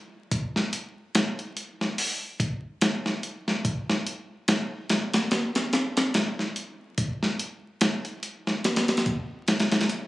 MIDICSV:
0, 0, Header, 1, 2, 480
1, 0, Start_track
1, 0, Tempo, 833333
1, 181, Time_signature, 4, 2, 24, 8
1, 5803, End_track
2, 0, Start_track
2, 0, Title_t, "Drums"
2, 181, Note_on_c, 9, 42, 86
2, 182, Note_on_c, 9, 36, 108
2, 239, Note_off_c, 9, 36, 0
2, 239, Note_off_c, 9, 42, 0
2, 323, Note_on_c, 9, 38, 37
2, 380, Note_off_c, 9, 38, 0
2, 420, Note_on_c, 9, 42, 68
2, 477, Note_off_c, 9, 42, 0
2, 661, Note_on_c, 9, 42, 92
2, 664, Note_on_c, 9, 38, 122
2, 718, Note_off_c, 9, 42, 0
2, 722, Note_off_c, 9, 38, 0
2, 800, Note_on_c, 9, 42, 43
2, 858, Note_off_c, 9, 42, 0
2, 902, Note_on_c, 9, 42, 74
2, 960, Note_off_c, 9, 42, 0
2, 1044, Note_on_c, 9, 38, 44
2, 1101, Note_off_c, 9, 38, 0
2, 1142, Note_on_c, 9, 46, 83
2, 1200, Note_off_c, 9, 46, 0
2, 1381, Note_on_c, 9, 36, 99
2, 1383, Note_on_c, 9, 42, 72
2, 1439, Note_off_c, 9, 36, 0
2, 1440, Note_off_c, 9, 42, 0
2, 1621, Note_on_c, 9, 42, 89
2, 1625, Note_on_c, 9, 38, 115
2, 1679, Note_off_c, 9, 42, 0
2, 1682, Note_off_c, 9, 38, 0
2, 1761, Note_on_c, 9, 38, 57
2, 1819, Note_off_c, 9, 38, 0
2, 1862, Note_on_c, 9, 42, 65
2, 1919, Note_off_c, 9, 42, 0
2, 2003, Note_on_c, 9, 38, 51
2, 2061, Note_off_c, 9, 38, 0
2, 2101, Note_on_c, 9, 36, 110
2, 2101, Note_on_c, 9, 42, 87
2, 2159, Note_off_c, 9, 36, 0
2, 2159, Note_off_c, 9, 42, 0
2, 2244, Note_on_c, 9, 38, 57
2, 2301, Note_off_c, 9, 38, 0
2, 2342, Note_on_c, 9, 42, 67
2, 2400, Note_off_c, 9, 42, 0
2, 2580, Note_on_c, 9, 42, 86
2, 2584, Note_on_c, 9, 38, 117
2, 2638, Note_off_c, 9, 42, 0
2, 2641, Note_off_c, 9, 38, 0
2, 2819, Note_on_c, 9, 42, 76
2, 2823, Note_on_c, 9, 38, 106
2, 2877, Note_off_c, 9, 42, 0
2, 2880, Note_off_c, 9, 38, 0
2, 2958, Note_on_c, 9, 42, 76
2, 2961, Note_on_c, 9, 38, 105
2, 3015, Note_off_c, 9, 42, 0
2, 3019, Note_off_c, 9, 38, 0
2, 3059, Note_on_c, 9, 42, 78
2, 3062, Note_on_c, 9, 38, 108
2, 3116, Note_off_c, 9, 42, 0
2, 3120, Note_off_c, 9, 38, 0
2, 3198, Note_on_c, 9, 42, 75
2, 3202, Note_on_c, 9, 38, 96
2, 3256, Note_off_c, 9, 42, 0
2, 3259, Note_off_c, 9, 38, 0
2, 3300, Note_on_c, 9, 42, 80
2, 3303, Note_on_c, 9, 38, 109
2, 3357, Note_off_c, 9, 42, 0
2, 3361, Note_off_c, 9, 38, 0
2, 3438, Note_on_c, 9, 42, 83
2, 3442, Note_on_c, 9, 38, 112
2, 3496, Note_off_c, 9, 42, 0
2, 3499, Note_off_c, 9, 38, 0
2, 3538, Note_on_c, 9, 42, 87
2, 3542, Note_on_c, 9, 38, 117
2, 3596, Note_off_c, 9, 42, 0
2, 3599, Note_off_c, 9, 38, 0
2, 3682, Note_on_c, 9, 38, 37
2, 3740, Note_off_c, 9, 38, 0
2, 3778, Note_on_c, 9, 42, 71
2, 3836, Note_off_c, 9, 42, 0
2, 4018, Note_on_c, 9, 42, 88
2, 4020, Note_on_c, 9, 36, 107
2, 4076, Note_off_c, 9, 42, 0
2, 4077, Note_off_c, 9, 36, 0
2, 4162, Note_on_c, 9, 38, 36
2, 4220, Note_off_c, 9, 38, 0
2, 4259, Note_on_c, 9, 42, 72
2, 4317, Note_off_c, 9, 42, 0
2, 4498, Note_on_c, 9, 42, 89
2, 4502, Note_on_c, 9, 38, 116
2, 4556, Note_off_c, 9, 42, 0
2, 4560, Note_off_c, 9, 38, 0
2, 4636, Note_on_c, 9, 42, 42
2, 4693, Note_off_c, 9, 42, 0
2, 4739, Note_on_c, 9, 42, 69
2, 4797, Note_off_c, 9, 42, 0
2, 4880, Note_on_c, 9, 38, 49
2, 4937, Note_off_c, 9, 38, 0
2, 4979, Note_on_c, 9, 42, 72
2, 4982, Note_on_c, 9, 38, 93
2, 5036, Note_off_c, 9, 42, 0
2, 5040, Note_off_c, 9, 38, 0
2, 5048, Note_on_c, 9, 42, 75
2, 5051, Note_on_c, 9, 38, 93
2, 5105, Note_off_c, 9, 42, 0
2, 5109, Note_off_c, 9, 38, 0
2, 5116, Note_on_c, 9, 42, 62
2, 5120, Note_on_c, 9, 38, 85
2, 5167, Note_off_c, 9, 42, 0
2, 5167, Note_on_c, 9, 42, 62
2, 5171, Note_off_c, 9, 38, 0
2, 5171, Note_on_c, 9, 38, 82
2, 5218, Note_off_c, 9, 42, 0
2, 5218, Note_on_c, 9, 42, 75
2, 5219, Note_on_c, 9, 36, 100
2, 5228, Note_off_c, 9, 38, 0
2, 5276, Note_off_c, 9, 42, 0
2, 5277, Note_off_c, 9, 36, 0
2, 5459, Note_on_c, 9, 42, 66
2, 5463, Note_on_c, 9, 38, 93
2, 5517, Note_off_c, 9, 42, 0
2, 5520, Note_off_c, 9, 38, 0
2, 5528, Note_on_c, 9, 42, 66
2, 5531, Note_on_c, 9, 38, 85
2, 5585, Note_off_c, 9, 42, 0
2, 5589, Note_off_c, 9, 38, 0
2, 5596, Note_on_c, 9, 42, 66
2, 5600, Note_on_c, 9, 38, 92
2, 5649, Note_off_c, 9, 42, 0
2, 5649, Note_on_c, 9, 42, 66
2, 5652, Note_off_c, 9, 38, 0
2, 5652, Note_on_c, 9, 38, 88
2, 5700, Note_off_c, 9, 42, 0
2, 5700, Note_on_c, 9, 42, 69
2, 5710, Note_off_c, 9, 38, 0
2, 5757, Note_off_c, 9, 42, 0
2, 5803, End_track
0, 0, End_of_file